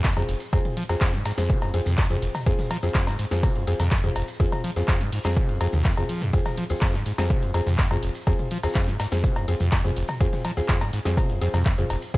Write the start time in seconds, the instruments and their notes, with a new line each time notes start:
0.04 kick, snare, clap, closed hi-hat, ride, maracas
0.17 acid bass F2, grand piano C4 F4 G#4, closed hi-hat, mid tom, cowbell, maracas
0.29 acid bass F1, closed hi-hat, open hi-hat, ride
0.40 maracas
0.53 acid bass F2, grand piano C4 F4 G#4, kick, closed hi-hat, ride, cowbell, maracas
0.65 closed hi-hat, mid tom, maracas
0.77 acid bass F3, closed hi-hat, open hi-hat, ride
0.89 acid bass F2, grand piano C4 F4 G#4, snare, closed hi-hat, cowbell, maracas
1.01 acid bass F2, kick, snare, clap, closed hi-hat, ride, maracas
1.14 acid bass G#2, snare, closed hi-hat, maracas
1.25 acid bass G#2, snare, closed hi-hat, open hi-hat, ride, cowbell
1.38 acid bass F2, grand piano C4 F4 G#4, snare, closed hi-hat, maracas
1.49 acid bass C3, kick, closed hi-hat, ride, maracas
1.62 acid bass F2, closed hi-hat, cowbell, maracas
1.74 acid bass F2, grand piano C4 F4 G#4, closed hi-hat, open hi-hat, ride
1.86 acid bass F2, closed hi-hat, mid tom, maracas
1.98 acid bass F2, kick, snare, clap, closed hi-hat, ride, cowbell, maracas
2.10 acid bass F2, grand piano C4 F4 G#4, closed hi-hat, mid tom, maracas
2.22 acid bass F1, closed hi-hat, open hi-hat, ride
2.35 mid tom, cowbell, maracas
2.46 acid bass F2, grand piano C4 F4 G#4, kick, closed hi-hat, ride, maracas
2.59 snare, closed hi-hat, mid tom, maracas
2.71 acid bass F3, closed hi-hat, open hi-hat, ride, cowbell
2.83 acid bass F2, grand piano C4 F4 G#4, closed hi-hat, maracas
2.94 acid bass F2, kick, snare, clap, closed hi-hat, ride, maracas
3.07 acid bass G#2, snare, closed hi-hat, cowbell, maracas
3.19 acid bass G#2, closed hi-hat, open hi-hat, ride
3.31 acid bass F2, grand piano C4 F4 G#4, snare, closed hi-hat, maracas
3.43 acid bass C3, kick, closed hi-hat, ride, cowbell, maracas
3.55 acid bass F2, closed hi-hat, maracas
3.67 acid bass F2, grand piano C4 F4 G#4, closed hi-hat, open hi-hat, ride
3.80 acid bass F2, snare, closed hi-hat, mid tom, cowbell, maracas
3.91 kick, snare, clap, closed hi-hat, ride, maracas
4.03 acid bass F2, grand piano C4 F4 G#4, closed hi-hat, mid tom, maracas
4.16 acid bass F1, closed hi-hat, open hi-hat, ride, cowbell
4.28 maracas
4.40 acid bass F2, grand piano C4 F4 G#4, kick, closed hi-hat, ride, maracas
4.52 closed hi-hat, mid tom, cowbell, maracas
4.64 acid bass F3, closed hi-hat, open hi-hat, ride
4.76 acid bass F2, grand piano C4 F4 G#4, snare, closed hi-hat, maracas
4.88 acid bass F2, kick, snare, clap, closed hi-hat, ride, cowbell, maracas
5.01 acid bass G#2, snare, closed hi-hat, maracas
5.12 acid bass G#2, open hi-hat, ride
5.24 acid bass F2, grand piano C4 F4 G#4, snare, closed hi-hat, cowbell, maracas
5.36 acid bass C3, kick, closed hi-hat, ride, maracas
5.48 acid bass F2, closed hi-hat, maracas
5.61 acid bass F2, grand piano C4 F4 G#4, closed hi-hat, open hi-hat, ride, cowbell
5.73 acid bass D#2, closed hi-hat, mid tom, maracas
5.84 acid bass F2, kick, snare, clap, closed hi-hat, ride, maracas
5.97 acid bass F2, grand piano C4 F4 G#4, closed hi-hat, mid tom, cowbell, maracas
6.09 acid bass F3, closed hi-hat, open hi-hat, ride
6.21 acid bass F2, mid tom, maracas
6.33 acid bass F2, grand piano C4 F4 G#4, kick, closed hi-hat, ride, maracas
6.46 snare, closed hi-hat, mid tom, cowbell, maracas
6.57 acid bass F3, closed hi-hat, open hi-hat, ride
6.70 acid bass D#2, grand piano C4 F4 G#4, closed hi-hat, maracas
6.81 acid bass F2, kick, snare, clap, closed hi-hat, ride, cowbell, maracas
6.94 acid bass G#2, snare, closed hi-hat, maracas
7.06 acid bass G#2, closed hi-hat, open hi-hat, ride
7.18 acid bass F2, grand piano C4 F4 G#4, snare, closed hi-hat, cowbell, maracas
7.30 acid bass C3, kick, closed hi-hat, ride, maracas
7.42 acid bass F2, closed hi-hat, maracas
7.54 acid bass F2, grand piano C4 F4 G#4, closed hi-hat, open hi-hat, ride, cowbell
7.67 acid bass F2, snare, closed hi-hat, mid tom, maracas
7.78 acid bass F2, kick, snare, clap, closed hi-hat, ride, maracas
7.91 acid bass F2, grand piano C4 F4 G#4, closed hi-hat, mid tom, cowbell, maracas
8.03 acid bass F1, closed hi-hat, open hi-hat, ride
8.15 maracas
8.27 acid bass F2, grand piano C4 F4 G#4, kick, closed hi-hat, ride, cowbell, maracas
8.39 closed hi-hat, mid tom, maracas
8.51 acid bass F3, closed hi-hat, open hi-hat, ride
8.63 acid bass D#2, grand piano C4 F4 G#4, snare, closed hi-hat, cowbell, maracas
8.75 acid bass F2, kick, snare, clap, closed hi-hat, ride, maracas
8.88 acid bass G#2, snare, closed hi-hat, maracas
9.00 acid bass G#2, snare, closed hi-hat, open hi-hat, ride, cowbell
9.12 acid bass F2, grand piano C4 F4 G#4, snare, closed hi-hat, maracas
9.24 acid bass C3, kick, closed hi-hat, ride, maracas
9.36 acid bass F2, closed hi-hat, cowbell, maracas
9.48 acid bass F2, grand piano C4 F4 G#4, closed hi-hat, open hi-hat, ride
9.60 acid bass F2, closed hi-hat, mid tom, maracas
9.72 kick, snare, clap, closed hi-hat, ride, cowbell, maracas
9.84 acid bass F2, grand piano C4 F4 G#4, closed hi-hat, mid tom, maracas
9.96 acid bass F1, closed hi-hat, open hi-hat, ride
10.08 mid tom, cowbell, maracas
10.20 acid bass F2, grand piano C4 F4 G#4, kick, closed hi-hat, ride, maracas
10.33 snare, closed hi-hat, mid tom, maracas
10.45 acid bass F3, closed hi-hat, open hi-hat, ride, cowbell
10.57 acid bass D#2, grand piano C4 F4 G#4, closed hi-hat, maracas
10.68 acid bass F2, kick, snare, clap, closed hi-hat, ride, maracas
10.81 acid bass G#2, snare, closed hi-hat, cowbell, maracas
10.93 acid bass G#2, closed hi-hat, open hi-hat, ride
11.05 acid bass F2, grand piano C4 F4 G#4, snare, closed hi-hat, maracas
11.17 acid bass C3, kick, closed hi-hat, ride, cowbell, maracas
11.29 acid bass F2, closed hi-hat, maracas
11.41 acid bass F2, grand piano C4 F4 G#4, closed hi-hat, open hi-hat, ride
11.54 acid bass F2, snare, closed hi-hat, mid tom, cowbell, maracas
11.65 kick, snare, clap, closed hi-hat, ride, maracas
11.78 acid bass F2, grand piano C4 F4 G#4, closed hi-hat, mid tom, maracas
11.90 acid bass F1, closed hi-hat, open hi-hat, ride, cowbell
12.02 maracas
12.14 acid bass F2, grand piano C4 F4 G#4, kick, closed hi-hat, ride, maracas